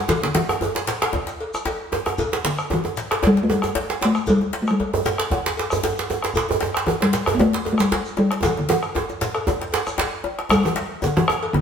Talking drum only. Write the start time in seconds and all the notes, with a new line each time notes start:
Already playing: G3
0.09 E3
0.23 D3
0.35 E3
2.45 D3
2.73 E3
3.27 G3
3.43 A3
3.51 G3
4.05 A3
4.30 G3
4.62 A3
4.71 G3
6.87 E3
7.03 G3
7.35 B3
7.41 A3
7.73 A3
7.80 G3
8.18 G3
8.45 E3
8.59 D3
8.70 E3
10.51 G3
10.65 E3
11.04 D3
11.17 E3
11.53 D3